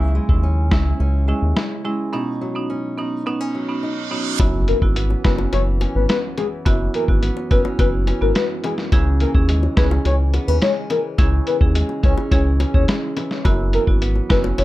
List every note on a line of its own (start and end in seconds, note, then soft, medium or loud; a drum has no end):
0.00 0.20 C#2 loud
0.00 2.13 C#3 medium
0.00 0.15 E3 medium
0.00 0.26 G#3 medium
0.00 0.26 C#4 medium
0.00 0.26 E4 loud
0.00 0.70 E4 medium
0.15 1.27 G#3 medium
0.29 0.73 D#2 medium
0.29 0.45 G#3 medium
0.29 0.45 C#4 medium
0.29 0.45 E4 medium
0.29 kick medium
0.43 1.00 C#4 medium
0.71 0.94 C#2 medium
0.71 0.87 G#3 medium
0.71 0.87 C#4 medium
0.71 1.55 E4 medium
0.71 0.87 E4 medium
0.71 kick loud
0.71 cross-stick loud
0.71 snare loud
1.00 1.33 C#2 loud
1.00 2.69 C#4 medium
1.28 1.84 G#3 medium
1.28 1.44 G#3 medium
1.28 1.44 C#4 medium
1.28 1.44 E4 medium
1.42 1.53 D#2 medium
1.56 2.13 E4 medium
1.56 cross-stick medium
1.56 snare loud
1.85 2.11 G#3 medium
1.85 2.19 G#3 medium
1.85 2.11 C#4 medium
1.85 2.11 E4 medium
2.13 4.39 B2 medium
2.13 2.52 B3 medium
2.13 2.52 C#4 medium
2.13 2.52 D#4 medium
2.13 2.97 D#4 medium
2.41 3.54 F#3 medium
2.55 2.71 B3 medium
2.55 2.71 C#4 medium
2.55 2.71 D#4 medium
2.70 3.26 C#4 medium
2.98 3.13 B3 medium
2.98 3.14 C#4 medium
2.98 3.82 D#4 medium
2.98 3.14 D#4 medium
3.26 3.42 B3 medium
3.26 3.41 B3 medium
3.26 3.42 C#4 medium
3.26 3.42 D#4 loud
3.26 reverse cymbal medium
3.41 4.45 C#4 medium
3.55 4.11 F#3 medium
3.69 4.08 B3 medium
3.69 4.08 C#4 medium
3.69 4.08 D#4 medium
3.83 4.45 D#4 medium
4.11 4.67 F#3 medium
4.11 4.37 B3 medium
4.11 4.37 C#4 medium
4.11 4.37 D#4 medium
4.39 4.73 F#1 loud
4.39 6.65 F#2 medium
4.39 4.79 B3 medium
4.39 4.79 E4 medium
4.39 4.79 F#4 loud
4.39 kick loud
4.39 closed hi-hat medium
4.39 high bongo medium
4.39 impact medium
4.68 5.52 E3 medium
4.68 4.77 A#4 medium
4.68 closed hi-hat medium
4.82 5.15 G#1 medium
4.82 4.98 B3 medium
4.82 4.98 E4 medium
4.82 4.98 F#4 medium
4.82 kick loud
4.96 6.08 B3 medium
4.96 closed hi-hat medium
5.10 high bongo medium
5.24 5.47 F#1 loud
5.24 5.40 B3 medium
5.24 5.80 C#4 medium
5.24 5.40 E4 medium
5.24 5.40 F#4 medium
5.24 5.34 B4 medium
5.24 kick loud
5.24 cross-stick loud
5.24 snare loud
5.24 closed hi-hat soft
5.38 high bongo medium
5.53 5.86 F#1 loud
5.53 6.37 E3 medium
5.53 5.62 C#5 medium
5.53 closed hi-hat medium
5.53 high bongo medium
5.81 7.50 C#4 medium
5.81 closed hi-hat medium
5.81 high bongo medium
5.95 6.06 G#1 medium
5.95 6.05 B4 medium
6.09 7.21 B3 medium
6.09 6.19 B4 medium
6.09 cross-stick medium
6.09 snare loud
6.09 closed hi-hat medium
6.38 6.94 E3 medium
6.38 6.47 G#4 medium
6.38 closed hi-hat medium
6.38 low bongo medium
6.66 6.88 F#1 loud
6.66 8.92 F#2 medium
6.66 7.05 B3 medium
6.66 7.05 E4 medium
6.66 7.05 F#4 loud
6.66 kick loud
6.66 closed hi-hat medium
6.66 high bongo medium
6.94 7.79 E3 medium
6.94 7.04 A#4 medium
6.94 closed hi-hat medium
7.08 7.30 G#1 loud
7.08 7.24 B3 medium
7.08 7.24 E4 medium
7.08 7.24 F#4 medium
7.08 kick loud
7.22 8.34 B3 medium
7.22 closed hi-hat medium
7.37 high bongo medium
7.51 7.62 F#1 medium
7.51 7.66 B3 medium
7.51 8.07 C#4 medium
7.51 7.67 E4 medium
7.51 7.67 F#4 medium
7.51 7.61 B4 medium
7.51 kick loud
7.51 closed hi-hat soft
7.65 high bongo medium
7.79 8.12 F#1 loud
7.79 8.63 E3 medium
7.79 7.95 B3 medium
7.79 7.95 E4 medium
7.79 7.95 F#4 loud
7.79 7.89 B4 medium
7.79 kick loud
7.79 closed hi-hat medium
7.79 high bongo medium
8.07 9.77 C#4 medium
8.07 closed hi-hat medium
8.07 high bongo medium
8.21 8.32 G#1 loud
8.21 8.37 B3 medium
8.21 8.37 E4 medium
8.21 8.37 F#4 medium
8.21 8.31 A#4 medium
8.35 8.98 B3 medium
8.35 8.45 B4 medium
8.35 cross-stick medium
8.35 snare loud
8.35 closed hi-hat medium
8.64 9.20 E3 medium
8.64 8.74 G#4 medium
8.64 closed hi-hat medium
8.64 low bongo medium
8.78 snare medium
8.92 9.25 C#2 loud
8.92 11.18 C#3 medium
8.92 9.31 C#4 loud
8.92 9.31 E4 medium
8.92 9.32 G#4 loud
8.92 kick loud
8.92 closed hi-hat medium
8.92 high bongo medium
9.20 10.05 E3 medium
9.20 9.30 A#4 medium
9.20 closed hi-hat medium
9.35 9.68 D#2 medium
9.35 9.50 C#4 medium
9.35 9.50 E4 medium
9.35 9.51 G#4 medium
9.35 kick loud
9.49 10.61 G#3 medium
9.49 closed hi-hat medium
9.63 high bongo medium
9.77 9.99 C#2 loud
9.77 9.93 C#4 medium
9.77 10.33 C#4 medium
9.77 9.93 E4 medium
9.77 9.93 G#4 medium
9.77 9.87 B4 medium
9.77 kick loud
9.77 cross-stick loud
9.77 snare loud
9.77 closed hi-hat soft
9.91 high bongo medium
10.05 10.39 C#2 loud
10.05 10.90 E3 medium
10.05 10.15 C#5 medium
10.05 closed hi-hat medium
10.05 high bongo medium
10.34 10.48 B3 medium
10.34 closed hi-hat medium
10.34 high bongo medium
10.48 10.59 D#2 medium
10.48 12.02 C#4 medium
10.48 10.57 B4 medium
10.62 11.74 G#3 medium
10.62 10.72 C#5 medium
10.62 cross-stick loud
10.62 snare loud
10.62 closed hi-hat medium
10.90 11.47 E3 medium
10.90 11.00 A#4 medium
10.90 closed hi-hat medium
10.90 low bongo medium
11.18 11.41 C#2 loud
11.18 13.45 C#3 medium
11.18 11.58 C#4 medium
11.18 11.58 E4 medium
11.18 11.58 G#4 loud
11.18 kick loud
11.18 closed hi-hat medium
11.18 high bongo medium
11.47 12.31 E3 medium
11.47 11.56 B4 medium
11.47 closed hi-hat medium
11.61 11.83 D#2 loud
11.61 11.77 C#4 medium
11.61 11.77 E4 medium
11.61 11.77 G#4 medium
11.61 kick loud
11.75 12.87 G#3 medium
11.75 closed hi-hat medium
11.89 high bongo medium
12.03 12.15 C#2 medium
12.03 12.19 C#4 medium
12.03 12.60 C#4 medium
12.03 12.19 E4 medium
12.03 12.19 G#4 medium
12.03 12.13 C#5 medium
12.03 kick loud
12.03 closed hi-hat soft
12.17 high bongo medium
12.31 12.65 C#2 loud
12.31 13.16 E3 medium
12.31 12.47 C#4 medium
12.31 12.47 E4 medium
12.31 12.48 G#4 loud
12.31 12.41 C#5 medium
12.31 kick loud
12.31 closed hi-hat medium
12.31 high bongo medium
12.60 14.04 C#4 medium
12.60 closed hi-hat medium
12.60 high bongo medium
12.74 12.85 D#2 medium
12.74 12.90 C#4 medium
12.74 12.90 E4 medium
12.74 12.90 G#4 medium
12.74 12.84 C#5 medium
12.74 kick medium
12.88 13.51 G#3 medium
12.88 cross-stick medium
12.88 snare loud
12.88 closed hi-hat medium
13.17 13.73 E3 medium
13.17 closed hi-hat medium
13.17 low bongo medium
13.31 snare medium
13.45 13.78 F#1 loud
13.45 14.64 F#2 medium
13.45 13.84 B3 loud
13.45 13.84 E4 medium
13.45 13.84 F#4 loud
13.45 kick loud
13.45 closed hi-hat medium
13.45 high bongo medium
13.73 14.58 E3 medium
13.73 13.83 A#4 medium
13.73 closed hi-hat medium
13.87 14.21 G#1 medium
13.87 14.03 B3 medium
13.87 14.03 E4 medium
13.87 14.03 F#4 medium
13.87 kick loud
14.01 14.64 B3 medium
14.01 closed hi-hat medium
14.16 high bongo soft
14.30 14.52 F#1 medium
14.30 14.46 B3 medium
14.30 14.64 C#4 medium
14.30 14.46 E4 medium
14.30 14.46 F#4 medium
14.30 14.40 B4 medium
14.30 kick loud
14.30 cross-stick loud
14.30 snare loud
14.30 closed hi-hat soft
14.44 high bongo medium
14.58 14.64 F#1 loud
14.58 14.64 E3 medium
14.58 14.64 C#5 medium
14.58 closed hi-hat medium
14.58 high bongo medium